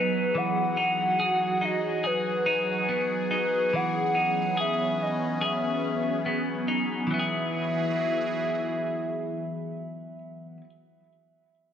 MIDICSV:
0, 0, Header, 1, 4, 480
1, 0, Start_track
1, 0, Key_signature, 4, "major"
1, 0, Tempo, 845070
1, 195, Time_signature, 4, 2, 24, 8
1, 6664, End_track
2, 0, Start_track
2, 0, Title_t, "Soft synth lead"
2, 0, Program_c, 0, 80
2, 0, Note_on_c, 0, 71, 84
2, 212, Note_on_c, 0, 78, 100
2, 220, Note_off_c, 0, 71, 0
2, 934, Note_on_c, 0, 75, 88
2, 943, Note_off_c, 0, 78, 0
2, 1172, Note_on_c, 0, 71, 87
2, 1180, Note_off_c, 0, 75, 0
2, 1884, Note_off_c, 0, 71, 0
2, 1892, Note_on_c, 0, 71, 78
2, 2131, Note_on_c, 0, 78, 90
2, 2139, Note_off_c, 0, 71, 0
2, 2603, Note_off_c, 0, 78, 0
2, 2616, Note_on_c, 0, 76, 92
2, 2854, Note_on_c, 0, 75, 81
2, 2863, Note_off_c, 0, 76, 0
2, 3094, Note_on_c, 0, 76, 81
2, 3102, Note_off_c, 0, 75, 0
2, 3805, Note_off_c, 0, 76, 0
2, 4046, Note_on_c, 0, 76, 82
2, 5947, Note_off_c, 0, 76, 0
2, 6664, End_track
3, 0, Start_track
3, 0, Title_t, "Analog synth pad"
3, 0, Program_c, 1, 89
3, 0, Note_on_c, 1, 54, 66
3, 0, Note_on_c, 1, 59, 67
3, 0, Note_on_c, 1, 68, 84
3, 177, Note_off_c, 1, 68, 0
3, 179, Note_off_c, 1, 59, 0
3, 199, Note_on_c, 1, 66, 61
3, 199, Note_on_c, 1, 68, 83
3, 2098, Note_off_c, 1, 66, 0
3, 2116, Note_on_c, 1, 61, 68
3, 2117, Note_on_c, 1, 59, 69
3, 4013, Note_off_c, 1, 54, 0
3, 4014, Note_off_c, 1, 68, 0
3, 4017, Note_off_c, 1, 59, 0
3, 4017, Note_off_c, 1, 61, 0
3, 4028, Note_on_c, 1, 52, 67
3, 4029, Note_on_c, 1, 68, 77
3, 4031, Note_on_c, 1, 64, 67
3, 4032, Note_on_c, 1, 66, 57
3, 5928, Note_off_c, 1, 52, 0
3, 5929, Note_off_c, 1, 68, 0
3, 5931, Note_off_c, 1, 64, 0
3, 5932, Note_off_c, 1, 66, 0
3, 6664, End_track
4, 0, Start_track
4, 0, Title_t, "Clean electric guitar"
4, 0, Program_c, 2, 27
4, 0, Note_on_c, 2, 52, 67
4, 0, Note_on_c, 2, 59, 50
4, 0, Note_on_c, 2, 63, 52
4, 0, Note_on_c, 2, 68, 59
4, 195, Note_off_c, 2, 52, 0
4, 197, Note_on_c, 2, 52, 68
4, 436, Note_off_c, 2, 63, 0
4, 438, Note_on_c, 2, 63, 51
4, 677, Note_off_c, 2, 68, 0
4, 680, Note_on_c, 2, 68, 61
4, 914, Note_off_c, 2, 63, 0
4, 916, Note_on_c, 2, 63, 51
4, 1155, Note_off_c, 2, 68, 0
4, 1158, Note_on_c, 2, 68, 57
4, 1396, Note_off_c, 2, 63, 0
4, 1398, Note_on_c, 2, 63, 53
4, 1638, Note_off_c, 2, 59, 0
4, 1640, Note_on_c, 2, 59, 48
4, 1877, Note_off_c, 2, 63, 0
4, 1879, Note_on_c, 2, 63, 51
4, 2118, Note_off_c, 2, 52, 0
4, 2120, Note_on_c, 2, 52, 70
4, 2354, Note_off_c, 2, 63, 0
4, 2356, Note_on_c, 2, 63, 46
4, 2595, Note_off_c, 2, 68, 0
4, 2597, Note_on_c, 2, 68, 55
4, 3073, Note_off_c, 2, 68, 0
4, 3075, Note_on_c, 2, 68, 54
4, 3553, Note_off_c, 2, 59, 0
4, 3555, Note_on_c, 2, 59, 48
4, 3793, Note_off_c, 2, 63, 0
4, 3795, Note_on_c, 2, 63, 49
4, 4012, Note_off_c, 2, 52, 0
4, 4015, Note_on_c, 2, 52, 62
4, 4037, Note_on_c, 2, 54, 65
4, 4052, Note_off_c, 2, 59, 0
4, 4055, Note_on_c, 2, 59, 74
4, 4084, Note_off_c, 2, 68, 0
4, 4086, Note_on_c, 2, 68, 73
4, 5783, Note_off_c, 2, 63, 0
4, 6003, Note_off_c, 2, 52, 0
4, 6025, Note_off_c, 2, 54, 0
4, 6043, Note_off_c, 2, 59, 0
4, 6074, Note_off_c, 2, 68, 0
4, 6664, End_track
0, 0, End_of_file